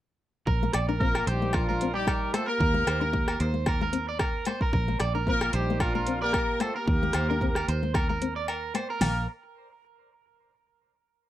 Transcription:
0.47 0.71 A#1 medium
0.47 0.72 A#4 medium
0.47 kick medium
0.63 0.80 A#3 medium
0.73 1.23 A#1 medium
0.73 0.87 D5 medium
0.73 cross-stick medium
0.73 closed hi-hat soft
0.73 low agogo medium
0.89 0.97 D4 medium
0.89 1.14 A#4 medium
1.00 1.25 A#3 medium
1.00 1.19 C4 medium
1.00 1.25 F4 medium
1.00 1.25 A#4 loud
1.00 kick medium
1.15 1.27 A#4 medium
1.15 cross-stick medium
1.15 low agogo medium
1.27 2.29 A#1 medium
1.27 1.54 G3 medium
1.27 1.55 D#4 medium
1.27 1.54 G4 medium
1.27 1.52 C5 medium
1.27 closed hi-hat soft
1.42 1.60 A#3 medium
1.53 1.95 F3 medium
1.53 1.96 D4 medium
1.53 1.95 F4 medium
1.53 1.67 A#4 medium
1.53 kick medium
1.53 cross-stick medium
1.53 low agogo medium
1.69 1.77 A#3 medium
1.69 1.94 A#4 medium
1.81 1.99 C4 medium
1.81 closed hi-hat soft
1.93 2.30 G3 medium
1.93 2.32 D#4 medium
1.93 2.30 G4 medium
1.93 2.07 D5 medium
2.07 2.33 A#4 medium
2.07 kick medium
2.07 cross-stick medium
2.07 low agogo medium
2.32 2.47 A3 medium
2.32 2.52 A#3 medium
2.32 2.49 F4 medium
2.32 2.47 A4 medium
2.32 2.47 C5 medium
2.32 cross-stick medium
2.32 closed hi-hat soft
2.32 low agogo medium
2.46 3.50 A#3 medium
2.46 3.51 G4 medium
2.46 3.50 A#4 loud
2.46 2.59 A#4 medium
2.60 2.84 D#2 medium
2.60 2.85 A#4 medium
2.60 kick medium
2.74 2.92 A#3 medium
2.87 3.36 D#2 medium
2.87 3.01 C5 medium
2.87 cross-stick medium
2.87 closed hi-hat soft
2.87 low agogo medium
3.01 3.09 D4 medium
3.01 3.27 A#4 medium
3.13 3.31 D#4 medium
3.13 kick medium
3.28 3.40 A#4 medium
3.28 cross-stick medium
3.28 low agogo medium
3.40 4.43 D#2 loud
3.40 3.66 C5 medium
3.40 closed hi-hat soft
3.54 3.72 A#3 medium
3.66 3.81 A#4 medium
3.66 kick medium
3.66 cross-stick medium
3.66 low agogo medium
3.81 3.90 A#3 medium
3.81 4.07 A#4 medium
3.93 4.11 C4 medium
3.93 closed hi-hat soft
4.09 4.20 D5 medium
4.19 4.45 A#4 medium
4.19 kick medium
4.19 cross-stick medium
4.19 low agogo medium
4.45 4.65 A#3 medium
4.45 4.61 C5 medium
4.45 closed hi-hat soft
4.45 low agogo medium
4.61 4.72 A#4 medium
4.61 kick medium
4.73 4.98 A#1 medium
4.73 4.99 A#4 medium
4.73 kick medium
4.88 5.06 A#3 medium
5.00 5.50 A#1 medium
5.00 5.14 D5 medium
5.00 cross-stick medium
5.00 closed hi-hat soft
5.00 low agogo medium
5.15 5.23 D4 medium
5.15 5.40 A#4 medium
5.27 5.52 A#3 medium
5.27 5.46 C4 medium
5.27 5.52 F4 medium
5.27 5.52 A#4 loud
5.27 kick medium
5.41 5.53 A#4 medium
5.41 cross-stick medium
5.41 low agogo medium
5.53 6.57 A#1 loud
5.53 5.79 G3 medium
5.53 5.79 D#4 medium
5.53 5.79 G4 medium
5.53 5.79 C5 medium
5.53 closed hi-hat soft
5.70 5.87 A#3 medium
5.80 6.22 F3 medium
5.80 6.22 D4 medium
5.80 6.22 F4 medium
5.80 5.94 A#4 medium
5.80 kick medium
5.80 cross-stick medium
5.80 low agogo medium
5.95 6.03 A#3 medium
5.95 6.20 A#4 medium
6.07 6.25 C4 medium
6.07 closed hi-hat soft
6.21 6.58 A#3 loud
6.21 6.58 G4 medium
6.21 6.58 A#4 loud
6.21 6.33 D5 medium
6.33 6.59 A#4 medium
6.33 kick medium
6.33 cross-stick medium
6.33 low agogo medium
6.60 6.75 A3 medium
6.60 6.78 A#3 medium
6.60 6.75 F4 medium
6.60 6.75 A4 medium
6.60 6.75 C5 medium
6.60 cross-stick medium
6.60 closed hi-hat soft
6.60 low agogo medium
6.75 7.82 A#3 medium
6.75 7.82 G4 medium
6.75 7.82 A#4 medium
6.75 6.87 A#4 medium
6.88 7.12 D#2 medium
6.88 muted clean electric guitar stroke medium
6.88 kick medium
7.03 7.20 A#3 medium
7.13 7.64 D#2 medium
7.13 7.28 C5 medium
7.13 cross-stick medium
7.13 closed hi-hat medium
7.13 low agogo medium
7.30 7.38 D4 medium
7.30 7.54 A#4 medium
7.41 7.59 C4 medium
7.41 kick medium
7.55 7.68 A#4 medium
7.55 cross-stick medium
7.55 low agogo medium
7.68 8.71 D#2 loud
7.68 7.94 C5 medium
7.68 closed hi-hat soft
7.83 8.00 A#3 medium
7.94 8.08 A#4 medium
7.94 kick medium
7.94 cross-stick medium
7.94 low agogo medium
8.09 8.18 A#3 medium
8.09 8.34 A#4 medium
8.22 8.39 C4 medium
8.22 closed hi-hat soft
8.36 8.47 D5 medium
8.48 8.73 A#4 medium
8.48 low agogo medium
8.74 8.92 A#3 medium
8.74 8.89 C5 medium
8.74 closed hi-hat soft
8.74 low agogo medium
8.90 9.01 A#4 medium
9.00 9.26 A#1 medium
9.00 9.25 A#3 medium
9.00 9.25 A#4 medium
9.00 9.26 A#4 medium
9.00 muted nylon-string guitar stroke medium
9.00 snare medium
9.00 open hi-hat medium
9.00 low agogo medium

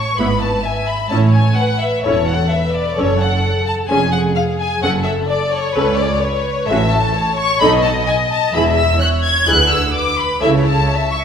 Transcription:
0.00 0.13 C#5 soft
0.00 0.16 C#6 medium
0.16 0.56 G#1 soft
0.16 0.57 G#2 soft
0.16 0.40 B3 soft
0.16 0.40 E4 soft
0.16 0.63 B4 soft
0.16 0.41 B5 medium
0.41 0.64 A5 soft
0.63 1.12 E5 soft
0.63 0.87 G#5 medium
0.86 1.11 B5 soft
1.09 1.50 A1 soft
1.09 1.50 A2 soft
1.09 1.33 C#4 soft
1.09 1.33 E4 soft
1.09 1.57 C#5 soft
1.09 1.17 A5 medium
1.33 1.57 G#5 soft
1.55 2.05 B4 soft
1.55 1.80 F#5 medium
1.80 2.04 E5 medium
2.04 2.43 E1 soft
2.04 2.44 E2 soft
2.04 2.27 C#4 soft
2.04 2.27 E4 soft
2.04 2.51 A4 soft
2.04 2.27 C#5 medium
2.27 2.51 F#5 medium
2.51 2.98 B4 soft
2.51 2.74 E5 soft
2.73 2.97 D5 medium
2.97 3.36 F#1 soft
2.97 3.36 F#2 soft
2.97 3.19 C#4 soft
2.97 3.88 A4 soft
2.97 3.19 A4 soft
2.97 3.20 C#5 medium
3.20 3.67 F#5 medium
3.66 3.74 A5 medium
3.88 4.29 F1 soft
3.88 4.29 F2 soft
3.88 4.12 C#4 soft
3.88 4.81 G#4 soft
3.88 4.12 G#4 soft
3.88 4.12 G#5 medium
4.11 4.19 F#5 medium
4.35 4.43 F5 medium
4.60 4.83 G#5 medium
4.82 5.21 F#1 soft
4.82 5.21 F#2 medium
4.82 5.04 C#4 soft
4.82 5.04 A4 soft
4.82 5.76 A4 soft
4.82 4.90 F#5 medium
5.05 5.13 E5 medium
5.28 5.52 D5 medium
5.54 5.76 C#5 medium
5.75 6.14 C#2 medium
5.75 6.14 C#2 soft
5.75 5.97 C#4 soft
5.75 5.97 A4 soft
5.75 5.98 B4 medium
5.75 6.21 C#5 medium
5.98 6.22 D5 medium
6.21 6.68 B4 medium
6.21 6.68 C#5 medium
6.66 7.06 A1 medium
6.66 7.07 A2 medium
6.66 6.90 C#4 soft
6.66 6.90 F#4 soft
6.66 7.14 A4 soft
6.66 6.90 E5 medium
6.91 7.37 A5 medium
7.15 7.61 C#5 medium
7.37 7.60 C#6 medium
7.60 7.99 B1 medium
7.60 7.99 B2 medium
7.60 7.82 D#4 medium
7.60 7.82 A4 soft
7.60 8.55 D#5 medium
7.60 7.69 B5 medium
7.84 7.92 A5 medium
8.08 8.16 G#5 medium
8.30 8.53 A5 medium
8.53 8.92 E1 medium
8.53 8.93 E2 medium
8.53 8.75 E4 soft
8.53 8.75 G#4 soft
8.53 9.01 E5 medium
8.53 8.62 B5 medium
8.76 9.00 E6 medium
9.00 9.46 C#5 medium
9.00 9.08 F#6 medium
9.24 9.47 G#6 medium
9.47 9.86 D2 medium
9.47 9.86 D3 soft
9.47 9.69 E4 soft
9.47 9.69 G#4 soft
9.47 9.93 B4 soft
9.47 9.71 F#6 medium
9.70 9.94 E6 medium
9.94 10.41 B4 medium
9.94 10.18 D6 medium
10.19 10.42 B5 medium
10.41 10.80 C#2 soft
10.41 10.81 C#3 medium
10.41 10.63 E4 soft
10.41 10.63 A4 soft
10.41 10.89 C#5 medium
10.41 10.50 E5 medium
10.64 11.10 A5 medium
10.90 11.24 E5 medium
11.12 11.20 C#6 medium

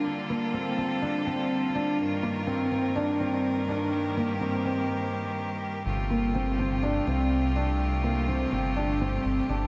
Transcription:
0.00 1.95 D3 medium
0.00 5.82 G3 medium
0.00 1.95 A#3 medium
0.00 3.88 F4 medium
0.04 1.96 A4 medium
0.29 0.49 A#3 medium
0.54 0.73 C4 medium
0.78 0.98 C4 medium
1.02 1.22 D4 medium
1.27 1.66 C4 medium
1.75 1.94 D4 medium
1.98 5.82 G2 medium
1.98 5.82 D#3 medium
1.98 5.82 A#3 medium
1.98 5.82 A#4 medium
2.23 2.43 A#3 medium
2.47 2.67 C4 medium
2.72 2.91 C4 medium
2.96 3.15 D4 medium
3.20 3.59 C4 medium
3.68 3.88 D4 medium
3.92 5.84 G4 medium
4.17 4.36 A#3 medium
4.41 4.61 C4 medium
4.65 4.85 C4 medium
5.86 7.00 G1 medium
5.86 9.67 C3 medium
5.86 9.67 G3 medium
5.86 9.67 A3 medium
5.86 9.67 F4 medium
5.86 9.67 G4 medium
6.10 6.30 A#3 medium
6.35 6.54 C4 medium
6.59 6.79 C4 medium
6.83 7.03 D4 loud
7.07 8.46 C2 medium
7.07 7.46 C4 medium
7.56 7.75 D4 medium
8.03 8.23 A#3 medium
8.28 8.48 C4 medium
8.52 9.18 G1 medium
8.52 8.72 C4 medium
8.76 8.96 D4 medium
9.01 9.40 C4 medium
9.25 9.41 G1 loud
9.49 9.65 G1 medium
9.49 9.67 D4 medium

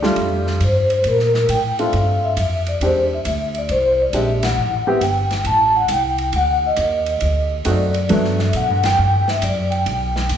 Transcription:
0.00 0.15 D2 medium
0.00 0.58 G3 medium
0.00 0.58 A3 medium
0.00 0.58 D4 medium
0.00 0.58 F4 medium
0.00 0.43 D5 medium
0.00 snare soft
0.16 0.59 F2 medium
0.16 ride medium
0.47 snare soft
0.60 1.03 G2 medium
0.60 hi-hat pedal medium
0.60 ride medium
0.64 1.08 C5 medium
0.90 ride soft
1.04 1.47 A#2 medium
1.04 1.51 A#4 medium
1.04 ride medium
1.19 snare soft
1.34 snare soft
1.49 1.91 A2 medium
1.49 1.77 G5 medium
1.49 hi-hat pedal soft
1.49 ride medium
1.79 2.34 A3 medium
1.79 2.34 C4 soft
1.79 2.34 D4 soft
1.79 2.35 F4 medium
1.79 2.24 F5 medium
1.79 ride soft
1.93 2.36 G2 medium
1.93 ride soft
2.24 2.64 E5 medium
2.37 2.79 F2 medium
2.37 hi-hat pedal soft
2.37 ride medium
2.66 2.82 D5 medium
2.66 ride soft
2.81 3.23 E2 medium
2.81 3.08 G#3 medium
2.81 3.08 C4 soft
2.81 3.09 D4 soft
2.81 3.08 G4 medium
2.81 2.96 C5 medium
2.81 ride medium
3.14 3.27 E5 medium
3.25 3.68 D2 medium
3.25 3.57 E5 medium
3.25 hi-hat pedal soft
3.25 ride medium
3.54 3.71 D5 medium
3.54 ride soft
3.69 4.12 C2 medium
3.69 3.98 C5 medium
3.69 ride medium
4.02 4.15 D5 medium
4.13 4.56 A#1 medium
4.13 4.40 G#3 medium
4.13 4.40 C4 soft
4.13 4.40 D4 soft
4.13 4.40 G4 medium
4.13 4.45 E5 medium
4.13 hi-hat pedal medium
4.13 ride medium
4.43 5.03 F#5 medium
4.43 snare medium
4.43 ride medium
4.57 5.00 A1 medium
4.87 5.00 B3 medium
4.87 5.00 C4 medium
4.87 5.00 E4 medium
4.87 5.00 G4 medium
5.01 5.44 G1 medium
5.01 5.43 G5 medium
5.01 hi-hat pedal medium
5.01 ride medium
5.31 snare soft
5.31 ride soft
5.44 5.87 A1 medium
5.44 5.74 A5 loud
5.44 ride medium
5.76 5.89 F#5 medium
5.88 6.32 C2 medium
5.88 6.36 G5 medium
5.88 hi-hat pedal medium
5.88 ride medium
6.18 ride soft
6.33 6.76 D2 medium
6.33 6.65 F#5 medium
6.33 ride medium
6.66 7.49 D#5 medium
6.76 7.20 D#2 medium
6.76 hi-hat pedal medium
6.76 ride medium
7.06 ride soft
7.20 7.64 D2 medium
7.20 ride medium
7.65 8.08 F#2 medium
7.65 7.92 A3 medium
7.65 7.92 C4 medium
7.65 7.92 D#4 medium
7.65 7.92 F#4 medium
7.65 hi-hat pedal medium
7.65 ride medium
7.71 8.09 D5 medium
7.94 ride soft
8.09 8.53 G2 medium
8.09 9.33 F#3 medium
8.09 9.33 A3 medium
8.09 9.33 B3 medium
8.09 9.33 D4 medium
8.09 ride medium
8.14 8.39 E5 medium
8.24 snare soft
8.39 snare soft
8.44 8.55 E5 medium
8.53 8.70 B2 medium
8.53 8.83 F#5 medium
8.53 hi-hat pedal soft
8.53 ride medium
8.70 8.83 G2 soft
8.83 8.97 F#2 medium
8.83 9.30 G5 medium
8.83 snare medium
8.83 ride medium
8.99 9.41 G2 medium
9.28 9.43 E5 medium
9.28 snare soft
9.42 9.84 F#2 medium
9.42 9.73 D5 medium
9.42 hi-hat pedal medium
9.42 ride medium
9.71 10.37 G5 medium
9.71 ride soft
9.86 10.29 B1 medium
9.86 ride medium
10.16 snare soft
10.29 10.37 D2 medium
10.29 hi-hat pedal soft
10.29 ride medium

